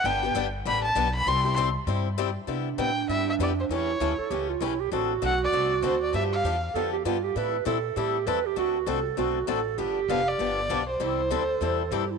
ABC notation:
X:1
M:4/4
L:1/8
Q:"Swing" 1/4=197
K:C
V:1 name="Violin"
g2 z2 b a2 b | c'2 z6 | z2 g2 e e d c | ^c4 z4 |
z2 ^f d3 c d | e f3 z4 | z8 | z8 |
z2 f d4 c- | c6 z2 |]
V:2 name="Clarinet"
z8 | z8 | D8 | E2 E A G F E G |
^F8 | G2 z2 A G F G | B2 A2 G2 B G | ^F2 A2 F2 A2 |
G6 z2 | E2 A4 G E |]
V:3 name="Steel-string acoustic guitar"
[D,G,B,DG] [B,DG] [D,G,B,DG] z [D,G,B,DG] z [D,G,B,DG] z | [C,G,CEG] [CEG] [C,G,CEG] z [C,G,CEG] z [C,G,CEG] z | [C,G,B,EG] z [C,G,B,EG] z [C,G,B,EG] z [C,G,B,EG] z | [^C,E,A,^CG] z [C,E,A,CG] z [C,E,A,CG] z [C,E,A,CG] z |
[D,A,C^FA] z [D,A,CFA] z [D,A,CFA] z [D,A,CFA] z | [D,F,B,DG] z [D,F,B,DG] z [D,F,B,DG] z [D,F,B,DG] z | [E,G,CEA] z [E,G,CEA] z [E,G,CEA] z [E,G,CEA] z | [D,A,C^FA] z [D,A,CFA] z [D,A,CFA] z [D,A,CFA] z |
[D,F,B,DG] z [D,F,B,DG] z [D,F,B,DG] z [D,F,B,DG] z | [C,E,G,CEA] z [C,E,G,CEA] z [C,E,G,CEA] z [C,E,G,CEA] z |]
V:4 name="Upright bass" clef=bass
G,,,2 G,,,2 A,,,2 B,,,2 | C,,4 G,,4 | C,2 A,,2 G,,2 F,,2 | E,,2 D,, z ^C,,2 B,,,2 |
A,,,2 B,,,2 C,,2 D,,2 | G,,2 E,,2 F,,2 G,,2 | A,,2 _B,,2 A,,2 E,,2 | D,,2 C,,2 B,,,2 A,,,2 |
G,,,2 F,,,2 G,,,2 B,,,2 | C,,2 D,,2 E,,2 G,,2 |]